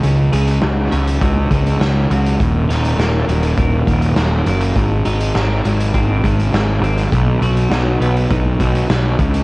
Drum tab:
HH |x-xxx-xxx-xxx-xx|x-xxx-xxx-xxx-xx|x-xxx-xxx-xxx-xx|x-xxx-xxx-xxx-xx|
SD |----o-------o---|--o-o-------o---|----o-------o---|----o-------o---|
BD |--------o-o-----|o-------o-o-----|o-------o-o-----|o-------o-o---o-|